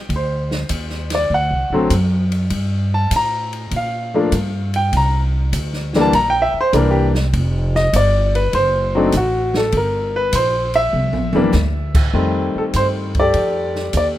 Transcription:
0.09 upright bass D2, kick, ride
0.16 grand piano C5
0.51 snare
0.69 upright bass D#2, kick, hi-hat pedal, ride
0.90 snare
1.10 snare, ride
1.15 grand piano D5
1.30 upright bass D2, kick
1.34 grand piano F#5
1.50 upright bass C2
1.70 upright bass A1, grand piano D3 F#3 A3
1.74 grand piano C4
1.90 upright bass F#2, kick, hi-hat pedal, ride
2.32 ride
2.50 upright bass G2, kick, ride
2.94 grand piano A5
3.11 upright bass A2, kick, hi-hat pedal, ride
3.16 grand piano A#5
3.53 ride
3.71 upright bass A#2, kick, ride
3.76 grand piano F5
4.14 grand piano F3 A3 A#3 D4
4.32 upright bass G2, kick, hi-hat pedal, ride
4.74 grand piano G5, ride
4.92 upright bass C2, kick, ride
4.97 grand piano A#5
5.53 upright bass D2, kick, hi-hat pedal, ride
5.73 snare
5.93 grand piano E3 G3 A#3 D4, snare
6.01 grand piano A5
6.13 upright bass A#1, grand piano A#5, kick, ride
6.30 grand piano G5
6.42 grand piano E5
6.54 muted upright bass stroke
6.61 grand piano C5
6.73 upright bass C2, grand piano E3 G3 A#3 D4 A#4, kick, hi-hat pedal, ride
6.91 grand piano G4
7.15 snare
7.33 upright bass F1, kick, ride
7.75 grand piano D#5, snare
7.93 upright bass G1, grand piano D5, kick, hi-hat pedal, ride
8.35 grand piano B4, ride
8.53 upright bass F#1, grand piano C5, kick, ride
8.95 grand piano F#3 A3 C4 D4 D#4
9.12 upright bass A1, kick, hi-hat pedal, ride
9.17 grand piano F#4
9.54 grand piano A4, snare
9.72 upright bass G1, kick, ride
9.77 grand piano A#4
10.16 grand piano B4
10.32 upright bass A#1, grand piano C5, kick, hi-hat pedal, ride
10.74 grand piano E5, ride
10.93 upright bass C2, high tom
11.13 upright bass A#1, high tom
11.33 upright bass G1, grand piano E3 G3 A#3 D4, high tom
11.52 upright bass D2, snare, hi-hat pedal
11.95 kick, crash
12.13 upright bass F2, grand piano D#3 G3 A3 C4, kick
12.55 grand piano A4, muted upright bass stroke
12.73 upright bass G2, grand piano C5, kick, hi-hat pedal, ride
13.15 kick, ride
13.20 grand piano G4 A4 D5
13.34 upright bass F2, kick, ride
13.75 snare
13.93 upright bass D#2, kick, hi-hat pedal, ride
13.97 grand piano D5

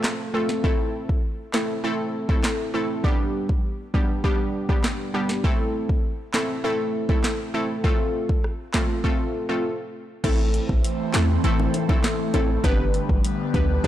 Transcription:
Already playing: synth pluck A3 C4 F4 A4
0.04 cross-stick, snare, clap
0.34 synth pluck A3 C4 F4 A4
0.49 snare
0.64 synth pluck A3 C4 E4 A4, kick
1.09 kick
1.54 synth pluck A3 C4 E4 A4, snare, clap
1.84 synth pluck A3 C4 E4 A4
2.29 synth pluck A3 C4 E4 A4, kick
2.44 snare, clap
2.74 synth pluck A3 C4 E4 A4
3.04 synth pluck G3 B3 D4 G4, kick
3.49 kick
3.94 synth pluck G3 B3 D4 G4, kick
4.24 synth pluck G3 B3 D4 G4, kick
4.69 synth pluck G3 B3 D4 G4, kick
4.84 snare, clap
5.14 synth pluck G3 B3 D4 G4
5.29 snare
5.44 synth pluck A3 C4 E4 A4, kick
5.89 kick
6.34 synth pluck A3 C4 E4 A4, snare, clap
6.64 synth pluck A3 C4 E4 A4
7.09 synth pluck A3 C4 E4 A4, kick
7.24 snare, clap
7.54 synth pluck A3 C4 E4 A4
7.84 synth pluck A3 C4 F4 A4, kick
8.29 kick
8.44 cross-stick
8.74 synth pluck A3 C4 F4 A4, kick, snare, clap
9.04 synth pluck A3 C4 F4 A4, kick
9.49 synth pluck A3 C4 F4 A4
10.24 808-style bass A1, analog synth pad E3 A3 C4, synth pluck A3 C4 E4 A4, kick, closed hi-hat, crash, high bongo
10.54 closed hi-hat
10.69 808-style bass A1, kick
10.84 closed hi-hat
11.14 808-style bass E2, synth pluck A3 C4 E4 A4, snare, clap, closed hi-hat, low bongo
11.44 808-style bass A1, synth pluck A3 C4 E4 A4, closed hi-hat
11.60 high bongo
11.74 closed hi-hat, high bongo
11.89 synth pluck A3 C4 E4 A4, kick, high bongo
12.04 snare, clap, closed hi-hat
12.34 808-style bass A1, synth pluck A3 C4 E4 A4, closed hi-hat, high bongo, low bongo
12.64 808-style bass G1, analog synth pad D3 G3 B3, synth pluck B3 D4 G4 B4, kick, closed hi-hat, high bongo
12.94 closed hi-hat
13.09 808-style bass G1, kick
13.24 closed hi-hat
13.54 808-style bass D2, synth pluck B3 D4 G4 B4, kick, closed hi-hat, low bongo
13.84 808-style bass G1, synth pluck B3 D4 G4, kick, closed hi-hat

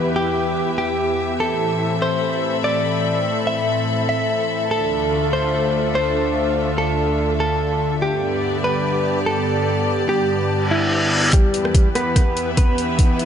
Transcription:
Already playing: analog synth pad E2 E3 B3 G4 B4, string section E4 G4 E5, downlifter
0.16 clean electric guitar G4
0.78 clean electric guitar G4
1.40 analog synth pad A2 C4 A4 E5, string section A4, clean electric guitar A4
2.02 clean electric guitar C5
2.10 string section B5
2.64 clean electric guitar D5
3.47 clean electric guitar E5
4.09 clean electric guitar E5
4.71 analog synth pad D2 D3 A3 F4, string section D4, clean electric guitar A4
5.33 clean electric guitar C5
5.95 clean electric guitar C5
6.78 clean electric guitar A4
7.40 clean electric guitar A4
8.02 analog synth pad G2 B3 G4 D5, clean electric guitar G4, string section G4
8.25 string section D5
8.40 string section A5
8.64 clean electric guitar B4
9.26 clean electric guitar A4
10.09 clean electric guitar G4
10.50 reverse cymbal
10.71 clean electric guitar E4
11.33 analog synth pad E2 E3 B3 G4 B4, clean electric guitar G3 G4, string section E4, kick, closed hi-hat, riser
11.54 string section B4, closed hi-hat
11.65 cross-stick
11.75 kick, closed hi-hat
11.95 clean electric guitar B3 B4, cross-stick, closed hi-hat
12.16 kick, cross-stick, closed hi-hat
12.29 string section E5
12.37 closed hi-hat
12.57 clean electric guitar B3 B4, kick, closed hi-hat
12.78 closed hi-hat
12.99 kick, closed hi-hat
13.19 closed hi-hat

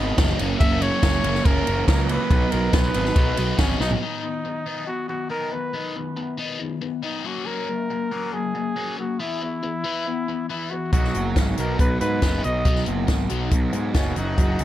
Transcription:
Already playing: picked electric bass G#1, overdriven electric guitar D#3 B3 D#4 F#4
0.18 picked electric bass F#1, overdriven electric guitar D#3 B3 D#4, kick, snare, ride
0.39 picked electric bass F#1, overdriven electric guitar E3 A#3 C#4, distorted electric guitar F#3, ride
0.59 picked electric bass F#1, overdriven electric guitar E3 A#3 C#4, distorted electric guitar F#3, trumpet E5, kick, ride
0.81 overdriven electric guitar E3 A#3 C#4, distorted electric guitar F#3, trumpet C#5, ride
1.02 picked electric bass F#1, overdriven electric guitar E3 A#3 C#4, distorted electric guitar F#3, kick, snare, ride
1.24 picked electric bass F#1, overdriven electric guitar E3 A#3 C#4, distorted electric guitar F#3, ride
1.35 snare
1.45 picked electric bass F#1, overdriven electric guitar E3 A#3 C#4, distorted electric guitar F#3, trumpet A#4, kick, ride
1.67 picked electric bass F#1, overdriven electric guitar E3 A#3 C#4, distorted electric guitar F#3, ride
1.87 picked electric bass C#2, overdriven electric guitar E3 A#3 C#4, distorted electric guitar F#3, trumpet A#4, kick, snare, ride
2.09 overdriven electric guitar E3 A#3 C#4, distorted electric guitar F#3, trumpet B4, ride
2.30 picked electric bass B1, overdriven electric guitar F#3 B3 D#4, kick, ride
2.51 picked electric bass B1, overdriven electric guitar F#3 B3 D#4, trumpet A#4, ride
2.73 picked electric bass B1, overdriven electric guitar F#3 B3 D#4, trumpet B4, kick, snare, ride
2.94 picked electric bass G#1, overdriven electric guitar F#3 B3 D#4, ride
3.05 snare
3.16 picked electric bass B1, overdriven electric guitar F#3 B3 D#4, kick, ride
3.37 picked electric bass B1, overdriven electric guitar F#3 B3 D#4, ride
3.58 picked electric bass G#1, overdriven electric guitar F#3 B3 D#4, trumpet C#4, kick, snare, ride
3.80 picked electric bass B1, overdriven electric guitar F#3 B3 D#4, trumpet D#4, snare
3.91 floor tom
4.02 overdriven electric guitar D#3 B3 D#4, trumpet D#4
4.23 overdriven electric guitar D#3 B3
4.45 overdriven electric guitar D#3 B3
4.66 overdriven electric guitar D#3 B3 D#4
4.87 overdriven electric guitar D#3 B3, trumpet F#4
5.09 overdriven electric guitar D#3 B3, trumpet F#4
5.29 overdriven electric guitar D#3 B3 D#4, trumpet A#4
5.52 overdriven electric guitar D#3 B3, trumpet B4
5.73 overdriven electric guitar D#3 B3 D#4
5.95 overdriven electric guitar D#3 B3
6.16 overdriven electric guitar D#3 B3
6.38 overdriven electric guitar D#3 B3 D#4
6.60 overdriven electric guitar D#3 B3
6.81 overdriven electric guitar D#3 B3
7.03 overdriven electric guitar D#3 B3 D#4, trumpet D#4
7.24 overdriven electric guitar F#3 A#3 C#4, trumpet F#4
7.46 overdriven electric guitar F#3 A#3 C#4, trumpet A#4
7.68 overdriven electric guitar F#3 A#3
7.90 overdriven electric guitar F#3 A#3
8.11 overdriven electric guitar F#3 A#3 C#4
8.33 overdriven electric guitar F#3 A#3, trumpet G#4
8.55 overdriven electric guitar F#3 A#3
8.76 overdriven electric guitar F#3 A#3 C#4
8.98 overdriven electric guitar F#3 A#3, trumpet F#4
9.20 overdriven electric guitar E3 B3 E4, trumpet E4
9.41 overdriven electric guitar E3 B3
9.63 overdriven electric guitar E3 B3
9.84 overdriven electric guitar E3 B3 E4
10.06 overdriven electric guitar E3 B3
10.28 overdriven electric guitar E3 B3
10.49 overdriven electric guitar E3 B3 E4, trumpet E4
10.71 overdriven electric guitar E3 B3, trumpet F#4
10.93 picked electric bass B1, overdriven electric guitar F#3 B3 D#4, trumpet F#4, kick, closed hi-hat
11.04 snare
11.14 picked electric bass F#1, overdriven electric guitar F#3 B3, distorted electric guitar F#4, closed hi-hat
11.36 picked electric bass G#1, overdriven electric guitar F#3 B3, distorted electric guitar D#4, kick, snare, closed hi-hat
11.58 picked electric bass B1, overdriven electric guitar F#3 B3 D#4, trumpet A#4, closed hi-hat
11.79 picked electric bass B1, overdriven electric guitar F#3 B3, trumpet B4, kick, closed hi-hat
12.00 picked electric bass G#2, overdriven electric guitar F#3 B3, distorted electric guitar D#4, trumpet B4, closed hi-hat
12.22 picked electric bass F#1, overdriven electric guitar F#3 B3 D#4, distorted electric guitar F#4, kick, snare, closed hi-hat
12.44 picked electric bass B1, overdriven electric guitar F#3 B3, trumpet D#5, closed hi-hat
12.65 picked electric bass B1, overdriven electric guitar F#3 B3 D#4, kick, closed hi-hat
12.76 snare
12.86 picked electric bass F#1, overdriven electric guitar F#3 B3, distorted electric guitar F#4, closed hi-hat
13.07 picked electric bass G#1, overdriven electric guitar F#3 B3, distorted electric guitar D#4, kick, snare, closed hi-hat
13.30 picked electric bass B1, overdriven electric guitar F#3 B3 D#4, closed hi-hat
13.51 picked electric bass B1, overdriven electric guitar F#3 B3, kick, closed hi-hat
13.73 picked electric bass G#2, overdriven electric guitar F#3 B3, distorted electric guitar D#4, closed hi-hat
13.94 picked electric bass F#1, overdriven electric guitar F#3 B3 D#4, trumpet C#4, distorted electric guitar F#4, kick, snare, closed hi-hat
14.15 picked electric bass F#1, distorted electric guitar F#3, overdriven electric guitar A#3 C#4 F#4, trumpet D#4, closed hi-hat
14.37 picked electric bass F#1, distorted electric guitar F#3, overdriven electric guitar A#3 C#4 F#4, kick, closed hi-hat
14.59 picked electric bass C#2, overdriven electric guitar A#3 C#4, distorted electric guitar G#4, closed hi-hat

